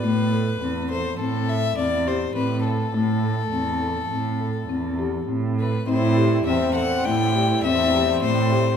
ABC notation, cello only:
X:1
M:5/4
L:1/8
Q:1/4=103
K:Am
V:1 name="Cello" clef=bass
A,,2 E,,2 A,,2 E,,2 A,,2 | A,,2 E,,2 A,,2 E,,2 A,,2 | A,,2 E,, z A,,2 E,,2 A,,2 |]